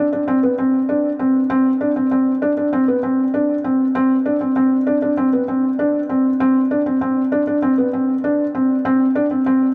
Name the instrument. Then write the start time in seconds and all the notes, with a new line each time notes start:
felt piano
0.13 D4
0.28 C4
0.43 B3
0.58 C4
0.89 D4
1.19 C4
1.50 C4
1.81 D4
1.96 C4
2.11 C4
2.42 D4
2.57 D4
2.73 C4
2.88 B3
3.03 C4
3.34 D4
3.64 C4
3.95 C4
4.26 D4
4.41 C4
4.56 C4
4.87 D4
5.02 D4
5.17 C4
5.33 B3
5.48 C4
5.79 D4
6.09 C4
6.40 C4
6.71 D4
6.86 C4
7.01 C4
7.32 D4
7.47 D4
7.62 C4
7.78 B3
7.93 C4
8.24 D4
8.55 C4
8.85 C4
9.15 D4
9.31 C4
9.46 C4